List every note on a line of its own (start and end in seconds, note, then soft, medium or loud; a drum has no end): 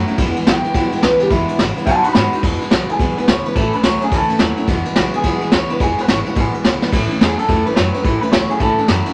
0.00 0.17 A2 loud
0.00 0.17 F#3 loud
0.08 0.19 A3 medium
0.08 0.19 C#4 medium
0.08 0.18 E4 medium
0.08 ride medium
0.18 0.34 E1 loud
0.18 0.36 E2 medium
0.18 0.45 E2 medium
0.18 0.36 B2 medium
0.18 0.45 B2 loud
0.18 0.37 E3 medium
0.18 0.36 G#3 medium
0.18 0.36 B3 medium
0.18 0.34 E4 loud
0.18 kick loud
0.18 ride loud
0.36 0.44 E3 medium
0.36 0.45 G#3 medium
0.36 0.46 B3 medium
0.36 0.46 E4 medium
0.36 muted upright bass stroke medium
0.36 ride medium
0.46 0.62 B1 medium
0.46 0.73 E2 medium
0.46 0.73 C#3 medium
0.46 0.64 E3 medium
0.46 0.64 G#3 medium
0.46 0.63 B3 medium
0.46 0.63 E4 medium
0.46 1.01 G5 loud
0.46 snare loud
0.46 ride medium
0.64 0.74 E3 soft
0.64 0.74 G#3 soft
0.64 0.74 B3 medium
0.64 0.75 E4 medium
0.64 muted upright bass stroke medium
0.64 ride medium
0.74 0.90 B1 medium
0.74 0.92 E2 medium
0.74 1.01 E2 loud
0.74 0.92 B2 medium
0.74 1.01 B2 medium
0.74 0.93 E3 medium
0.74 0.92 G#3 medium
0.74 0.92 B3 medium
0.74 0.91 E4 medium
0.74 kick loud
0.74 ride medium
0.92 1.02 E3 medium
0.92 1.02 G#3 medium
0.92 1.03 B3 medium
0.92 1.03 E4 medium
0.92 muted upright bass stroke medium
0.92 ride medium
1.02 1.19 C#2 loud
1.02 1.29 E2 medium
1.02 1.29 C#3 medium
1.02 1.21 E3 medium
1.02 1.21 G#3 medium
1.02 1.20 B3 medium
1.02 1.19 E4 medium
1.02 1.20 B4 loud
1.02 snare loud
1.02 ride medium
1.20 1.30 E3 soft
1.20 1.31 G#3 medium
1.20 1.31 B3 medium
1.20 1.31 E4 medium
1.20 1.30 G4 loud
1.20 muted upright bass stroke medium
1.20 ride medium
1.30 1.46 E1 loud
1.30 1.49 E2 medium
1.30 1.57 E2 medium
1.30 1.49 B2 medium
1.30 1.57 B2 loud
1.30 1.49 E3 medium
1.30 1.49 G#3 medium
1.30 1.48 B3 medium
1.30 1.58 E4 loud
1.30 1.48 E4 medium
1.30 kick loud
1.30 ride medium
1.49 1.58 E3 soft
1.49 1.59 G#3 soft
1.49 1.60 B3 medium
1.49 1.59 E4 medium
1.49 ride medium
1.59 1.75 G#1 medium
1.59 1.85 E2 medium
1.59 1.86 C#3 loud
1.59 1.77 E3 medium
1.59 1.77 G#3 medium
1.59 1.76 B3 medium
1.59 1.75 E4 medium
1.59 snare loud
1.59 ride medium
1.76 1.88 E3 medium
1.76 1.88 G#3 medium
1.76 1.87 B3 medium
1.76 1.87 E4 medium
1.76 muted upright bass stroke medium
1.76 ride medium
1.86 2.03 B1 loud
1.86 2.13 B2 medium
1.86 2.05 B2 medium
1.86 2.14 F#3 medium
1.86 2.05 F#3 medium
1.86 2.06 B3 medium
1.86 2.05 D#4 medium
1.86 2.04 F#4 medium
1.86 2.02 F#5 medium
1.86 2.04 A5 medium
1.86 kick loud
1.86 ride medium
2.03 2.16 D#4 medium
2.03 2.16 F#4 medium
2.03 2.14 F#5 medium
2.03 2.12 B5 medium
2.03 ride medium
2.08 2.15 B3 soft
2.13 2.31 G#2 medium
2.13 2.41 B2 medium
2.13 2.33 F#3 medium
2.13 2.42 G#3 loud
2.13 2.33 B3 medium
2.13 2.34 D#4 medium
2.13 2.42 B5 loud
2.13 snare loud
2.13 ride medium
2.18 2.32 F#4 medium
2.33 2.43 B3 soft
2.33 2.44 D#4 medium
2.33 2.44 F#4 medium
2.33 ride medium
2.43 2.59 E1 medium
2.43 2.61 E2 medium
2.43 2.70 E2 medium
2.43 2.61 B2 medium
2.43 2.70 B2 medium
2.43 2.61 E3 medium
2.43 2.61 G#3 medium
2.43 2.62 B3 medium
2.43 2.60 E4 medium
2.43 kick loud
2.43 crash loud
2.61 2.70 E3 soft
2.61 2.71 G#3 medium
2.61 2.72 B3 soft
2.61 2.72 E4 medium
2.61 ride medium
2.71 2.87 B1 medium
2.71 2.98 E2 medium
2.71 2.98 C#3 loud
2.71 2.89 E3 medium
2.71 2.90 G#3 medium
2.71 2.89 B3 medium
2.71 2.88 E4 medium
2.71 2.90 F#4 medium
2.71 snare loud
2.71 ride medium
2.89 2.99 E3 soft
2.89 2.99 G#3 soft
2.89 3.00 B3 medium
2.89 3.00 E4 medium
2.89 3.18 G#4 loud
2.89 muted upright bass stroke medium
2.89 ride medium
2.99 3.15 B1 medium
2.99 3.17 E2 medium
2.99 3.26 E2 medium
2.99 3.18 B2 medium
2.99 3.26 B2 medium
2.99 3.18 E3 medium
2.99 3.18 G#3 medium
2.99 3.17 B3 medium
2.99 3.16 E4 medium
2.99 kick loud
2.99 ride medium
3.17 3.27 E3 soft
3.17 3.28 G#3 medium
3.17 3.28 B3 soft
3.17 3.28 E4 medium
3.17 3.27 B4 medium
3.17 ride medium
3.27 3.44 C#2 medium
3.27 3.54 E2 medium
3.27 3.54 C#3 loud
3.27 3.46 E3 medium
3.27 3.46 G#3 medium
3.27 3.46 B3 medium
3.27 3.44 E4 medium
3.27 3.44 C#5 loud
3.27 snare loud
3.27 ride medium
3.45 3.55 E3 medium
3.45 3.56 G#3 medium
3.45 3.56 B3 medium
3.45 3.56 E4 medium
3.45 3.55 B4 loud
3.45 muted upright bass stroke medium
3.45 ride medium
3.55 3.71 A1 medium
3.55 3.82 A2 medium
3.55 3.74 A2 medium
3.55 3.74 E3 medium
3.55 3.82 E3 medium
3.55 3.74 A3 medium
3.55 3.73 C#4 medium
3.55 3.72 E4 medium
3.55 3.74 A4 loud
3.55 kick loud
3.55 ride medium
3.73 3.83 A3 soft
3.73 3.84 C#4 soft
3.73 3.84 E4 medium
3.73 3.84 B4 loud
3.73 ride medium
3.83 4.00 C#2 medium
3.83 4.11 A2 medium
3.83 4.01 E3 medium
3.83 4.11 F#3 loud
3.83 4.02 A3 medium
3.83 4.02 C#4 medium
3.83 4.00 E4 medium
3.83 4.03 C#5 loud
3.83 snare loud
3.83 ride loud
4.02 4.13 A3 soft
4.02 4.13 C#4 medium
4.02 4.12 E4 medium
4.02 4.14 G#4 medium
4.02 muted upright bass stroke medium
4.02 ride medium
4.11 4.28 C#2 medium
4.11 4.30 A2 medium
4.11 4.39 A2 medium
4.11 4.30 E3 medium
4.11 4.39 E3 loud
4.11 4.31 A3 medium
4.11 4.29 C#4 medium
4.11 4.28 E4 medium
4.11 4.41 A4 medium
4.11 kick loud
4.11 ride medium
4.29 4.39 A3 soft
4.29 4.40 C#4 medium
4.29 4.40 E4 medium
4.29 muted upright bass stroke medium
4.29 ride medium
4.39 4.56 D#2 medium
4.39 4.66 A2 medium
4.39 4.58 E3 medium
4.39 4.67 F#3 medium
4.39 4.58 A3 medium
4.39 4.57 C#4 medium
4.39 4.55 E4 medium
4.39 snare loud
4.39 ride medium
4.57 4.68 A3 medium
4.57 4.68 C#4 medium
4.57 4.68 E4 medium
4.57 ride medium
4.67 4.84 E1 loud
4.67 4.86 E2 medium
4.67 4.94 E2 medium
4.67 4.86 B2 medium
4.67 4.95 B2 loud
4.67 4.86 E3 medium
4.67 4.85 G#3 medium
4.67 4.85 B3 medium
4.67 4.84 E4 medium
4.67 kick loud
4.67 ride medium
4.85 4.95 E3 soft
4.85 4.96 G#3 medium
4.85 4.96 B3 medium
4.85 4.96 E4 medium
4.85 ride medium
4.96 5.12 B1 loud
4.96 5.22 E2 medium
4.96 5.22 C#3 loud
4.96 5.14 E3 medium
4.96 5.14 G#3 medium
4.96 5.14 B3 medium
4.96 5.13 E4 medium
4.96 5.15 F#4 medium
4.96 snare loud
4.96 ride medium
5.13 5.23 E3 soft
5.13 5.24 G#3 soft
5.13 5.24 B3 medium
5.13 5.24 E4 medium
5.13 5.53 G#4 loud
5.13 muted upright bass stroke medium
5.13 ride medium
5.23 5.40 B1 loud
5.23 5.42 E2 medium
5.23 5.51 E2 medium
5.23 5.42 B2 medium
5.23 5.51 B2 loud
5.23 5.42 E3 medium
5.23 5.41 G#3 medium
5.23 5.41 B3 medium
5.23 5.40 E4 medium
5.23 kick loud
5.23 ride medium
5.41 5.50 E3 soft
5.41 5.51 G#3 soft
5.41 5.52 B3 medium
5.41 5.52 E4 medium
5.41 muted upright bass stroke medium
5.41 ride medium
5.51 5.68 C#2 medium
5.51 5.78 E2 medium
5.51 5.79 C#3 loud
5.51 5.70 E3 medium
5.51 5.69 G#3 medium
5.51 5.68 B3 medium
5.51 5.68 E4 medium
5.51 5.71 C#5 loud
5.51 snare loud
5.51 ride medium
5.69 5.79 E3 medium
5.69 5.79 G#3 medium
5.69 5.80 B3 medium
5.69 5.80 E4 medium
5.69 5.81 B4 loud
5.69 muted upright bass stroke medium
5.69 ride medium
5.79 5.96 E1 loud
5.79 5.98 E2 medium
5.79 6.06 E2 medium
5.79 5.98 B2 medium
5.79 6.07 B2 loud
5.79 5.98 E3 medium
5.79 5.98 G#3 medium
5.79 5.97 B3 medium
5.79 5.96 E4 medium
5.79 6.00 G#4 loud
5.79 kick loud
5.79 ride medium
5.97 6.07 E3 soft
5.97 6.07 G#3 soft
5.97 6.08 B3 soft
5.97 6.08 E4 soft
5.97 6.10 B4 medium
5.97 muted upright bass stroke medium
5.97 ride medium
6.08 6.24 G#1 medium
6.08 6.35 E2 medium
6.08 6.35 C#3 medium
6.08 6.26 E3 medium
6.08 6.25 G#3 medium
6.08 6.24 B3 medium
6.08 6.24 E4 medium
6.08 6.15 C#5 loud
6.08 snare loud
6.08 ride loud
6.25 6.35 E3 soft
6.25 6.35 G#3 medium
6.25 6.35 B3 medium
6.25 6.36 E4 medium
6.25 6.32 F#4 medium
6.25 ride medium
6.35 6.52 A1 loud
6.35 6.54 E2 medium
6.35 6.63 E2 medium
6.35 6.54 B2 medium
6.35 6.63 B2 medium
6.35 6.54 E3 medium
6.35 6.54 G#3 medium
6.35 6.53 B3 medium
6.35 6.52 E4 medium
6.35 6.65 G#4 medium
6.35 kick loud
6.35 ride medium
6.53 6.62 E3 medium
6.53 6.63 G#3 soft
6.53 6.64 B3 medium
6.53 6.64 E4 medium
6.53 ride medium
6.63 6.81 C#2 medium
6.63 6.91 E2 medium
6.63 6.91 C#3 medium
6.63 6.82 E3 medium
6.63 6.82 G#3 medium
6.63 6.81 B3 medium
6.63 6.80 E4 medium
6.63 snare loud
6.63 ride medium
6.81 6.91 E3 medium
6.81 6.92 G#3 medium
6.81 6.92 B3 medium
6.81 6.92 E4 medium
6.81 muted upright bass stroke medium
6.81 snare medium
6.91 7.08 A1 loud
6.91 7.10 A2 medium
6.91 7.19 A2 medium
6.91 7.10 E3 medium
6.91 7.19 E3 medium
6.91 7.10 A3 medium
6.91 7.09 C#4 medium
6.91 7.08 E4 medium
6.91 kick loud
6.91 crash loud
6.91 ride medium
7.09 7.19 A3 medium
7.09 7.20 C#4 medium
7.09 7.20 E4 medium
7.09 ride medium
7.19 7.37 E2 medium
7.19 7.47 A2 medium
7.19 7.38 E3 medium
7.19 7.47 F#3 medium
7.19 7.38 A3 medium
7.19 7.38 C#4 medium
7.19 7.36 E4 medium
7.19 7.38 G#4 medium
7.19 snare loud
7.19 ride medium
7.38 7.48 A3 soft
7.38 7.49 C#4 medium
7.38 7.48 E4 medium
7.38 7.66 A4 loud
7.38 ride medium
7.48 7.65 E2 medium
7.48 7.66 A2 medium
7.48 7.74 A2 medium
7.48 7.75 E3 medium
7.48 7.66 E3 medium
7.48 7.67 A3 medium
7.48 7.67 C#4 medium
7.48 7.65 E4 medium
7.48 kick loud
7.48 ride medium
7.66 7.76 A3 soft
7.66 7.77 C#4 soft
7.66 7.77 E4 medium
7.66 7.75 B4 medium
7.66 ride medium
7.75 7.93 F#2 medium
7.75 8.02 A2 medium
7.75 7.94 E3 medium
7.75 8.03 F#3 loud
7.75 7.95 A3 medium
7.75 7.94 C#4 medium
7.75 7.93 E4 medium
7.75 7.93 C#5 loud
7.75 snare loud
7.75 ride medium
7.93 8.03 A3 medium
7.93 8.04 C#4 medium
7.93 8.04 E4 medium
7.93 8.04 B4 loud
7.93 ride medium
8.04 8.20 A1 loud
8.04 8.22 A2 medium
8.04 8.31 A2 medium
8.04 8.22 E3 medium
8.04 8.31 E3 loud
8.04 8.22 A3 medium
8.04 8.21 C#4 medium
8.04 8.20 E4 medium
8.04 8.21 A4 loud
8.04 kick loud
8.04 ride medium
8.21 8.31 A3 soft
8.21 8.32 C#4 medium
8.21 8.32 E4 medium
8.21 8.31 B4 loud
8.21 ride medium
8.31 8.49 C#2 medium
8.31 8.59 A2 medium
8.31 8.50 E3 medium
8.31 8.59 F#3 medium
8.31 8.50 A3 medium
8.31 8.49 C#4 medium
8.31 8.48 E4 medium
8.31 8.50 C#5 loud
8.31 snare loud
8.31 ride medium
8.49 8.59 A3 soft
8.49 8.60 C#4 soft
8.49 8.60 E4 medium
8.49 8.60 G#4 medium
8.49 muted upright bass stroke medium
8.49 ride medium
8.60 8.76 C#2 loud
8.60 8.78 A2 medium
8.60 8.87 A2 medium
8.60 8.78 E3 medium
8.60 8.87 E3 loud
8.60 8.78 A3 medium
8.60 8.78 C#4 medium
8.60 8.76 E4 medium
8.60 8.87 A4 medium
8.60 kick loud
8.60 ride medium
8.78 8.88 A3 soft
8.78 8.88 C#4 soft
8.78 8.88 E4 medium
8.78 muted upright bass stroke medium
8.78 ride medium
8.88 9.04 F#2 medium
8.88 9.13 A2 medium
8.88 9.06 E3 medium
8.88 9.13 F#3 loud
8.88 9.07 A3 medium
8.88 9.06 C#4 medium
8.88 9.05 E4 medium
8.88 snare loud
8.88 ride medium
9.06 9.13 A3 medium
9.06 9.13 C#4 medium
9.06 9.13 E4 medium
9.06 ride medium